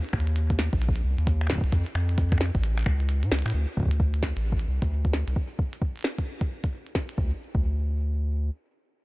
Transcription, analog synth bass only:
0.13 0.69 D#2 loud
0.73 1.02 A#1 loud
1.04 1.16 C2 medium
1.18 1.60 D#2 loud
1.64 1.71 C2 medium
1.72 1.84 F2 loud
1.95 2.51 F2 loud
2.55 2.84 A1 loud
2.86 3.24 C#2 medium
3.23 3.30 A2 medium
3.32 3.43 C#2 medium
3.46 3.53 A2 loud
3.54 3.66 D2 loud
3.77 4.33 D2 loud
4.37 4.66 A1 loud
4.68 4.80 C2 medium
4.82 5.24 D2 medium
5.28 5.35 C2 medium
7.18 7.33 D2 medium
7.55 8.50 D2 medium

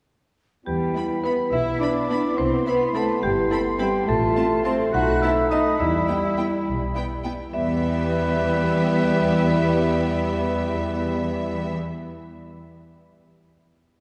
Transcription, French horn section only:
0.65 4.03 B3 soft
0.65 4.03 E4 soft
4.07 5.76 A3 medium
4.07 4.91 F4 soft
4.92 5.77 D#4 medium
5.79 7.24 G3 soft
5.79 7.24 E4 soft
7.55 11.73 G3 medium
7.55 11.73 E4 medium

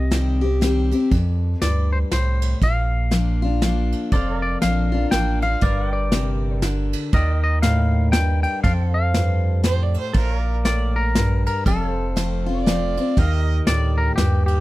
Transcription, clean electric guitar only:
0.00 0.58 D#5 medium
1.62 1.90 D5 medium
1.93 1.98 C5 medium
2.13 2.59 C5 medium
2.63 3.89 F5 medium
4.12 4.41 D5 medium
4.42 4.61 D5 medium
4.62 5.11 F5 medium
5.11 5.42 G5 medium
5.43 5.63 F5 medium
5.62 5.91 D5 medium
5.93 6.59 D5 medium
7.14 7.42 D#5 medium
7.44 7.62 D#5 medium
7.62 8.12 F5 medium
8.12 8.42 G5 medium
8.43 8.63 G5 loud
8.64 8.72 F5 medium
8.94 9.61 F5 medium
10.65 10.97 D5 medium
10.96 11.46 A#4 medium
11.47 11.65 A#4 medium
11.68 12.63 A4 medium
13.67 13.98 D5 loud
13.98 14.15 A#4 medium
14.16 14.45 G4 medium
14.46 14.60 G4 medium

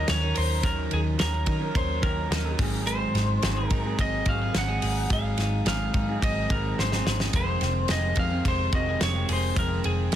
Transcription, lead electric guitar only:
0.10 0.35 C#5 loud
0.37 0.66 C5 medium
0.65 0.93 A#4 loud
0.94 1.01 G#4 medium
1.20 1.77 A#4 medium
1.77 2.05 C5 medium
2.03 2.55 A#4 medium
2.87 3.67 C5 loud
3.67 4.00 A#4 loud
4.01 4.28 D#5 loud
4.29 4.56 F5 loud
4.58 5.12 F#5 loud
5.13 5.67 F5 loud
5.68 6.19 F5 loud
6.24 6.51 D#5 medium
6.52 6.79 A#4 medium
6.80 7.18 C5 loud
7.36 7.91 C5 loud
7.91 8.19 D#5 loud
8.19 8.47 F5 medium
8.48 8.72 C5 medium
8.75 9.00 D#5 medium
9.03 9.28 C#5 medium
9.33 9.59 C5 medium
9.59 9.85 A#4 medium
9.85 10.13 G#4 medium

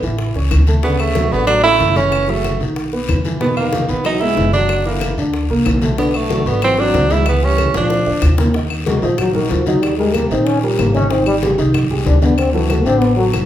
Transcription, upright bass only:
0.03 0.33 A1 medium
0.35 0.50 C#2 medium
0.51 1.26 D2 medium
1.31 1.76 A1 medium
1.80 2.55 F#1 medium
2.60 3.05 B1 medium
3.09 3.83 E2 medium
3.88 4.34 B1 medium
4.37 5.12 F#1 medium
5.18 5.47 D2 medium
5.50 5.65 C2 medium
5.66 6.40 B1 medium
6.46 6.91 G#1 medium
6.94 7.69 C#2 medium
7.74 8.04 A#1 medium
8.06 8.21 D2 medium
8.22 8.97 D#2 medium
9.02 9.47 A#1 medium
9.51 10.25 D#2 medium
10.31 10.75 A#1 medium
10.79 11.53 G#1 medium
11.58 12.03 C2 medium
12.06 12.80 D2 medium
12.85 13.30 A1 medium
13.33 13.46 E1 medium

